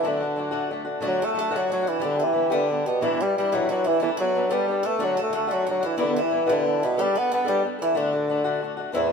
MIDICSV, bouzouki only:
0, 0, Header, 1, 2, 480
1, 0, Start_track
1, 0, Key_signature, 2, "major"
1, 0, Tempo, 329852
1, 61, Time_signature, 6, 3, 24, 8
1, 13277, End_track
2, 0, Start_track
2, 0, Title_t, "Bouzouki"
2, 0, Program_c, 0, 25
2, 67, Note_on_c, 0, 62, 59
2, 1218, Note_off_c, 0, 62, 0
2, 1488, Note_on_c, 0, 66, 70
2, 1739, Note_off_c, 0, 66, 0
2, 1776, Note_on_c, 0, 69, 79
2, 2002, Note_off_c, 0, 69, 0
2, 2020, Note_on_c, 0, 69, 83
2, 2220, Note_off_c, 0, 69, 0
2, 2268, Note_on_c, 0, 66, 75
2, 2482, Note_off_c, 0, 66, 0
2, 2499, Note_on_c, 0, 66, 74
2, 2706, Note_off_c, 0, 66, 0
2, 2724, Note_on_c, 0, 64, 68
2, 2927, Note_off_c, 0, 64, 0
2, 2933, Note_on_c, 0, 62, 63
2, 3181, Note_off_c, 0, 62, 0
2, 3196, Note_on_c, 0, 64, 72
2, 3659, Note_off_c, 0, 64, 0
2, 3664, Note_on_c, 0, 62, 79
2, 4120, Note_off_c, 0, 62, 0
2, 4165, Note_on_c, 0, 59, 70
2, 4372, Note_off_c, 0, 59, 0
2, 4400, Note_on_c, 0, 64, 71
2, 4636, Note_off_c, 0, 64, 0
2, 4665, Note_on_c, 0, 67, 71
2, 4868, Note_off_c, 0, 67, 0
2, 4923, Note_on_c, 0, 67, 69
2, 5112, Note_off_c, 0, 67, 0
2, 5129, Note_on_c, 0, 66, 80
2, 5351, Note_off_c, 0, 66, 0
2, 5369, Note_on_c, 0, 66, 74
2, 5579, Note_off_c, 0, 66, 0
2, 5594, Note_on_c, 0, 64, 77
2, 5801, Note_off_c, 0, 64, 0
2, 5819, Note_on_c, 0, 64, 64
2, 6064, Note_off_c, 0, 64, 0
2, 6071, Note_on_c, 0, 66, 82
2, 6503, Note_off_c, 0, 66, 0
2, 6558, Note_on_c, 0, 67, 78
2, 7007, Note_off_c, 0, 67, 0
2, 7032, Note_on_c, 0, 69, 86
2, 7245, Note_off_c, 0, 69, 0
2, 7275, Note_on_c, 0, 66, 69
2, 7512, Note_off_c, 0, 66, 0
2, 7523, Note_on_c, 0, 69, 80
2, 7736, Note_off_c, 0, 69, 0
2, 7754, Note_on_c, 0, 69, 80
2, 7966, Note_off_c, 0, 69, 0
2, 8016, Note_on_c, 0, 66, 72
2, 8228, Note_off_c, 0, 66, 0
2, 8245, Note_on_c, 0, 66, 74
2, 8457, Note_off_c, 0, 66, 0
2, 8481, Note_on_c, 0, 64, 78
2, 8694, Note_off_c, 0, 64, 0
2, 8700, Note_on_c, 0, 62, 80
2, 8944, Note_off_c, 0, 62, 0
2, 8970, Note_on_c, 0, 64, 81
2, 9438, Note_off_c, 0, 64, 0
2, 9451, Note_on_c, 0, 62, 86
2, 9941, Note_off_c, 0, 62, 0
2, 9942, Note_on_c, 0, 59, 84
2, 10141, Note_off_c, 0, 59, 0
2, 10172, Note_on_c, 0, 67, 85
2, 10401, Note_off_c, 0, 67, 0
2, 10412, Note_on_c, 0, 71, 85
2, 10620, Note_off_c, 0, 71, 0
2, 10647, Note_on_c, 0, 71, 87
2, 10853, Note_off_c, 0, 71, 0
2, 10886, Note_on_c, 0, 67, 87
2, 11118, Note_off_c, 0, 67, 0
2, 11380, Note_on_c, 0, 64, 86
2, 11595, Note_off_c, 0, 64, 0
2, 11601, Note_on_c, 0, 62, 66
2, 12743, Note_off_c, 0, 62, 0
2, 13019, Note_on_c, 0, 52, 73
2, 13267, Note_off_c, 0, 52, 0
2, 13277, End_track
0, 0, End_of_file